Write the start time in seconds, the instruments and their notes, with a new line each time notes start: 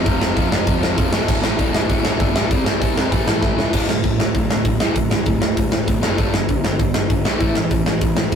0.04 picked electric bass F1, distorted electric guitar F2 C3 F3, kick, open hi-hat
0.20 picked electric bass F1, distorted electric guitar F2 C3 F3, snare
0.34 picked electric bass F1, distorted electric guitar F2 C3 F3, kick, open hi-hat
0.50 picked electric bass F1, distorted electric guitar F2 C3 F3, snare
0.65 picked electric bass F1, distorted electric guitar F2 C3 F3, kick, open hi-hat
0.80 distorted electric guitar F2 C3 F3, snare
0.96 picked electric bass F1, distorted electric guitar F2 C3 F3, kick, open hi-hat
1.12 picked electric bass D1, distorted electric guitar D2 A2 D3, snare
1.26 picked electric bass D1, distorted electric guitar D2 A2 D3, kick, crash
1.42 picked electric bass A1, distorted electric guitar D2 A2 D3, snare
1.58 picked electric bass D1, distorted electric guitar D2 A2 D3, kick, open hi-hat
1.73 picked electric bass D1, distorted electric guitar D2 A2 D3, snare
1.89 picked electric bass D1, distorted electric guitar D2 A2 D3, kick, open hi-hat
2.03 picked electric bass D1, distorted electric guitar D2 A2 D3, snare
2.19 picked electric bass G1, distorted electric guitar D2 A2 D3, kick, open hi-hat
2.35 picked electric bass D1, distorted electric guitar D2 A2 D3, snare
2.49 picked electric bass C2, distorted electric guitar C3 G3 C4, kick, open hi-hat
2.64 picked electric bass C2, distorted electric guitar C3 G3 C4, snare
2.80 picked electric bass C2, distorted electric guitar C3 G3 C4, kick, open hi-hat
2.95 picked electric bass C2, distorted electric guitar C3 G3 C4, snare
3.10 picked electric bass A1, distorted electric guitar A2 E3 A3, kick, open hi-hat
3.26 distorted electric guitar A2 E3 A3, snare
3.41 picked electric bass A1, distorted electric guitar A2 E3 A3, kick, snare
3.57 picked electric bass C#2, distorted electric guitar A2 E3 A3, snare
3.72 picked electric bass D1, distorted electric guitar D2 A2 D3, kick, crash
3.88 picked electric bass D1, distorted electric guitar D2 A2, snare
4.03 picked electric bass D1, distorted electric guitar D2 A2, kick, open hi-hat
4.19 picked electric bass D1, distorted electric guitar D2 A2, snare
4.35 picked electric bass D1, distorted electric guitar D2 A2, kick, open hi-hat
4.49 picked electric bass D1, distorted electric guitar D2 A2, snare
4.65 picked electric bass D1, distorted electric guitar D2 A2, kick, open hi-hat
4.80 picked electric bass D1, distorted electric guitar D2 A2 D3, snare
4.96 picked electric bass D1, distorted electric guitar D2 A2, kick, open hi-hat
5.10 picked electric bass D1, distorted electric guitar D2 A2, snare
5.26 picked electric bass D1, distorted electric guitar D2 A2, kick, open hi-hat
5.40 picked electric bass D1, distorted electric guitar D2 A2, snare
5.56 picked electric bass D1, distorted electric guitar D2 A2, kick, open hi-hat
5.71 picked electric bass D1, distorted electric guitar D2 A2, snare
5.86 picked electric bass D1, distorted electric guitar D2 A2, kick, open hi-hat
6.01 picked electric bass F#1, distorted electric guitar D2 A2 D3, snare
6.17 picked electric bass G1, distorted electric guitar G2 D3 G3, kick, open hi-hat
6.33 picked electric bass G1, distorted electric guitar G2 D3, snare
6.49 picked electric bass G1, distorted electric guitar G2 D3, kick, open hi-hat
6.64 picked electric bass G1, distorted electric guitar G2 D3, snare
6.79 picked electric bass G1, distorted electric guitar G2 D3, kick, open hi-hat
6.94 picked electric bass G1, distorted electric guitar G2 D3, snare
7.10 picked electric bass G1, distorted electric guitar G2 D3, kick, open hi-hat
7.25 picked electric bass B1, distorted electric guitar G2 D3 G3, snare
7.40 picked electric bass A1, distorted electric guitar A2 E3 A3, kick, open hi-hat
7.55 picked electric bass A1, distorted electric guitar A2 E3, snare
7.71 picked electric bass A1, distorted electric guitar A2 E3, kick, open hi-hat
7.86 picked electric bass A1, distorted electric guitar A2 E3, snare
8.01 picked electric bass A1, distorted electric guitar A2 E3, kick, open hi-hat
8.16 picked electric bass A1, distorted electric guitar A2 E3, snare
8.32 distorted electric guitar A2 E3, open hi-hat